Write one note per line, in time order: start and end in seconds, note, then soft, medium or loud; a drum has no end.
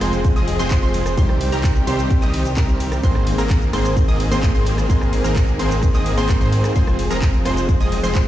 0.00 0.34 F1 medium
0.00 1.16 F3 medium
0.00 0.33 F3 medium
0.00 0.70 G#3 medium
0.00 1.16 G#3 medium
0.00 0.33 G#3 medium
0.00 0.71 C4 medium
0.00 8.28 C4 medium
0.00 0.33 C4 medium
0.00 0.02 F4 medium
0.00 0.68 F4 medium
0.00 1.16 G#4 medium
0.00 0.33 G#4 medium
0.00 0.02 C5 medium
0.00 0.33 C5 medium
0.00 0.69 C5 medium
0.00 0.33 C6 medium
0.00 cross-stick medium
0.00 open hi-hat loud
0.00 ride medium
0.13 closed hi-hat soft
0.13 shaker medium
0.25 kick loud
0.25 closed hi-hat medium
0.25 shaker medium
0.36 0.57 F1 loud
0.36 0.57 F3 loud
0.36 0.57 G#3 medium
0.36 0.57 C4 medium
0.36 0.57 G#4 medium
0.36 0.57 D#5 loud
0.36 0.57 D#6 loud
0.36 closed hi-hat soft
0.36 shaker soft
0.48 open hi-hat loud
0.48 ride medium
0.59 0.80 F1 loud
0.59 0.76 F3 medium
0.59 0.76 G#3 medium
0.59 0.76 C4 medium
0.59 0.76 G#4 medium
0.59 0.76 C5 loud
0.59 0.76 C6 loud
0.59 open hi-hat medium
0.59 shaker medium
0.70 1.14 G#3 medium
0.70 1.15 C4 medium
0.70 1.15 F4 medium
0.70 1.15 C5 medium
0.70 kick loud
0.70 clap loud
0.70 closed hi-hat medium
0.70 shaker medium
0.83 1.15 F1 medium
0.83 1.15 F3 medium
0.83 1.15 G#3 medium
0.83 1.15 C4 medium
0.83 1.15 G#4 medium
0.83 1.15 C5 medium
0.83 1.15 C6 medium
0.83 shaker soft
0.94 open hi-hat loud
0.94 ride medium
1.06 cross-stick medium
1.06 closed hi-hat medium
1.06 shaker medium
1.16 1.50 C2 loud
1.16 1.84 C3 medium
1.16 1.50 D#3 medium
1.16 3.02 D#3 medium
1.16 1.84 G3 medium
1.16 1.50 G3 medium
1.16 3.02 G3 medium
1.16 1.84 C4 medium
1.16 1.50 C4 medium
1.16 1.85 D#4 medium
1.16 1.50 G4 medium
1.16 3.02 G4 medium
1.16 1.50 C5 loud
1.16 1.85 C5 medium
1.16 1.50 C6 loud
1.16 kick loud
1.16 closed hi-hat medium
1.16 shaker medium
1.29 cross-stick medium
1.29 shaker soft
1.41 open hi-hat loud
1.41 ride medium
1.52 1.85 C2 loud
1.52 1.84 D#3 medium
1.52 1.84 G3 medium
1.52 1.84 C4 medium
1.52 1.84 G4 medium
1.52 1.84 A#4 medium
1.52 1.84 A#5 medium
1.52 closed hi-hat soft
1.52 shaker medium
1.64 kick loud
1.64 clap loud
1.64 closed hi-hat medium
1.64 shaker medium
1.76 closed hi-hat soft
1.76 shaker soft
1.86 2.20 C2 loud
1.86 2.54 C3 medium
1.86 2.19 D#3 medium
1.86 2.54 G3 medium
1.86 2.19 G3 medium
1.86 2.19 C4 medium
1.86 2.54 C4 medium
1.86 2.55 D#4 medium
1.86 2.19 G4 medium
1.86 2.19 C5 medium
1.86 2.55 C5 medium
1.86 2.19 C6 loud
1.86 open hi-hat loud
1.86 ride medium
1.99 closed hi-hat soft
1.99 shaker medium
2.11 kick loud
2.11 closed hi-hat medium
2.11 shaker medium
2.22 2.55 C2 loud
2.22 2.43 D#3 medium
2.22 2.43 G3 medium
2.22 2.43 C4 medium
2.22 2.43 G4 medium
2.22 2.43 D#5 loud
2.22 2.43 D#6 loud
2.22 clap soft
2.22 closed hi-hat soft
2.22 shaker soft
2.34 open hi-hat loud
2.34 ride medium
2.45 closed hi-hat medium
2.45 shaker medium
2.57 3.01 C2 loud
2.57 3.01 D#3 medium
2.57 3.01 G3 medium
2.57 3.01 C4 medium
2.57 3.01 G4 medium
2.57 3.01 A#4 medium
2.57 3.01 A#5 medium
2.57 kick loud
2.57 clap loud
2.57 closed hi-hat medium
2.57 shaker medium
2.69 closed hi-hat soft
2.69 shaker soft
2.80 open hi-hat loud
2.80 ride medium
2.92 cross-stick medium
2.92 closed hi-hat soft
2.92 shaker medium
3.02 3.36 G#1 loud
3.02 3.70 G#2 medium
3.02 3.36 D#3 medium
3.02 6.72 D#3 medium
3.02 3.70 G#3 medium
3.02 3.36 A#3 medium
3.02 6.72 A#3 medium
3.02 3.36 C4 medium
3.02 3.71 C4 medium
3.02 3.71 D#4 medium
3.02 3.36 G#4 medium
3.02 8.28 G#4 medium
3.02 3.71 A#4 medium
3.02 3.36 C5 loud
3.02 3.36 C6 loud
3.02 kick loud
3.02 closed hi-hat medium
3.02 shaker medium
3.15 cross-stick medium
3.15 shaker soft
3.27 open hi-hat loud
3.27 ride medium
3.38 3.71 G#1 medium
3.38 3.70 D#3 medium
3.38 3.70 A#3 medium
3.38 3.70 C4 medium
3.38 3.70 G#4 medium
3.38 3.70 A#4 medium
3.38 3.71 A#5 medium
3.38 closed hi-hat medium
3.38 shaker medium
3.50 kick loud
3.50 clap loud
3.50 closed hi-hat medium
3.50 shaker medium
3.62 closed hi-hat soft
3.62 shaker soft
3.72 4.06 G#1 medium
3.72 4.40 G#2 medium
3.72 4.05 D#3 medium
3.72 4.40 G#3 medium
3.72 4.05 A#3 medium
3.72 4.05 C4 medium
3.72 4.40 C4 medium
3.72 4.41 D#4 medium
3.72 4.05 G#4 medium
3.72 4.41 A#4 medium
3.72 4.05 C5 medium
3.72 4.05 C6 loud
3.72 cross-stick medium
3.72 open hi-hat loud
3.72 ride medium
3.85 closed hi-hat soft
3.85 shaker medium
3.97 kick loud
3.97 closed hi-hat medium
3.97 shaker medium
4.08 4.29 G#1 loud
4.08 4.29 D#3 medium
4.08 4.29 A#3 medium
4.08 4.29 C4 medium
4.08 4.29 G#4 medium
4.08 4.29 D#5 loud
4.08 4.29 D#6 loud
4.08 closed hi-hat soft
4.08 shaker soft
4.20 open hi-hat loud
4.20 ride medium
4.31 4.52 G#1 loud
4.31 4.48 D#3 medium
4.31 4.48 A#3 medium
4.31 4.48 C4 medium
4.31 4.48 G#4 medium
4.31 4.48 C5 loud
4.31 4.48 C6 loud
4.31 open hi-hat medium
4.31 shaker medium
4.42 4.87 G#2 medium
4.42 4.87 G#3 medium
4.42 4.87 C4 medium
4.42 4.87 D#4 medium
4.42 4.87 A#4 medium
4.42 kick loud
4.42 clap loud
4.42 closed hi-hat medium
4.42 shaker medium
4.55 4.87 G#1 loud
4.55 4.87 D#3 medium
4.55 4.87 A#3 medium
4.55 4.87 C4 medium
4.55 4.87 G#4 medium
4.55 4.87 C5 medium
4.55 4.87 C6 medium
4.55 shaker soft
4.67 open hi-hat loud
4.67 ride medium
4.78 cross-stick medium
4.78 closed hi-hat medium
4.78 shaker medium
4.88 5.22 G#1 loud
4.88 5.56 G#2 medium
4.88 5.22 D#3 medium
4.88 5.56 G#3 medium
4.88 5.22 A#3 medium
4.88 5.22 C4 medium
4.88 5.57 C4 medium
4.88 5.57 D#4 medium
4.88 5.22 G#4 medium
4.88 5.57 A#4 loud
4.88 5.22 C5 loud
4.88 5.22 C6 medium
4.88 kick loud
4.88 closed hi-hat medium
4.88 shaker medium
5.01 cross-stick medium
5.01 shaker soft
5.13 open hi-hat loud
5.13 ride medium
5.24 5.57 G#1 loud
5.24 5.56 D#3 medium
5.24 5.56 A#3 medium
5.24 5.56 C4 medium
5.24 5.56 G#4 medium
5.24 5.56 A#4 medium
5.24 5.57 A#5 medium
5.24 closed hi-hat medium
5.24 shaker medium
5.36 kick loud
5.36 clap loud
5.36 closed hi-hat medium
5.36 shaker medium
5.48 closed hi-hat soft
5.48 shaker soft
5.58 5.92 G#1 medium
5.58 6.26 G#2 medium
5.58 5.91 D#3 medium
5.58 6.26 G#3 medium
5.58 5.91 A#3 medium
5.58 5.91 C4 medium
5.58 6.26 C4 medium
5.58 6.27 D#4 medium
5.58 5.91 G#4 medium
5.58 6.27 A#4 medium
5.58 5.91 C5 medium
5.58 5.92 C6 medium
5.58 open hi-hat loud
5.58 ride medium
5.71 closed hi-hat medium
5.71 shaker medium
5.83 kick loud
5.83 closed hi-hat medium
5.83 shaker medium
5.94 6.15 G#1 loud
5.94 6.15 D#3 medium
5.94 6.15 A#3 medium
5.94 6.15 C4 medium
5.94 6.15 G#4 medium
5.94 6.15 D#5 loud
5.94 6.15 D#6 loud
5.94 clap soft
5.94 closed hi-hat soft
5.94 shaker soft
6.06 open hi-hat loud
6.06 ride medium
6.17 6.39 G#1 loud
6.17 6.34 D#3 loud
6.17 6.34 A#3 medium
6.17 6.34 C4 medium
6.17 6.34 G#4 medium
6.17 6.34 C5 loud
6.17 6.34 C6 loud
6.17 closed hi-hat medium
6.17 shaker medium
6.29 6.73 G#2 medium
6.29 6.73 G#3 medium
6.29 6.73 C4 medium
6.29 6.73 D#4 medium
6.29 6.73 A#4 medium
6.29 kick loud
6.29 clap loud
6.29 closed hi-hat medium
6.29 shaker medium
6.41 6.73 G#2 loud
6.41 6.73 D#3 medium
6.41 6.73 A#3 medium
6.41 6.73 C4 medium
6.41 6.73 G#4 medium
6.41 6.73 C5 medium
6.41 6.73 C6 medium
6.41 closed hi-hat soft
6.41 shaker soft
6.52 open hi-hat loud
6.52 ride medium
6.64 cross-stick medium
6.64 closed hi-hat medium
6.64 shaker medium
6.74 7.08 F1 loud
6.74 7.08 F3 medium
6.74 8.28 F3 medium
6.74 7.42 G#3 medium
6.74 7.08 G#3 medium
6.74 8.28 G#3 medium
6.74 7.42 C4 medium
6.74 7.08 C4 medium
6.74 7.43 F4 medium
6.74 7.08 G#4 medium
6.74 7.08 C5 loud
6.74 7.43 C5 medium
6.74 7.08 C6 loud
6.74 kick loud
6.74 closed hi-hat medium
6.74 shaker medium
6.87 cross-stick medium
6.87 shaker soft
6.99 open hi-hat loud
6.99 ride medium
7.10 7.43 F1 loud
7.10 7.43 F3 medium
7.10 7.43 G#3 medium
7.10 7.43 C4 medium
7.10 7.43 G#4 medium
7.10 7.43 A#4 medium
7.10 7.43 A#5 medium
7.10 closed hi-hat medium
7.10 shaker medium
7.22 kick loud
7.22 clap loud
7.22 closed hi-hat medium
7.22 shaker medium
7.34 closed hi-hat soft
7.34 shaker soft
7.44 7.78 F1 medium
7.44 7.77 F3 medium
7.44 8.12 G#3 medium
7.44 7.77 G#3 medium
7.44 8.12 C4 medium
7.44 7.77 C4 medium
7.44 8.13 F4 medium
7.44 7.77 G#4 medium
7.44 7.77 C5 medium
7.44 8.13 C5 medium
7.44 7.78 C6 loud
7.44 cross-stick medium
7.44 open hi-hat loud
7.44 ride medium
7.57 closed hi-hat medium
7.57 shaker medium
7.69 kick loud
7.69 closed hi-hat medium
7.69 shaker medium
7.80 8.01 F1 loud
7.80 8.01 F3 medium
7.80 8.01 G#3 medium
7.80 8.01 C4 medium
7.80 8.01 G#4 medium
7.80 8.01 D#5 loud
7.80 8.01 D#6 loud
7.80 closed hi-hat soft
7.80 shaker soft
7.92 open hi-hat loud
7.92 ride medium
8.03 8.25 F1 loud
8.03 8.20 F3 medium
8.03 8.20 G#3 medium
8.03 8.20 C4 medium
8.03 8.20 G#4 medium
8.03 8.20 C5 loud
8.03 8.20 C6 loud
8.03 open hi-hat medium
8.03 shaker medium
8.15 8.28 G#3 medium
8.15 8.28 C4 medium
8.15 8.28 F4 medium
8.15 8.28 C5 medium
8.15 kick loud
8.15 clap loud
8.15 closed hi-hat medium
8.15 shaker medium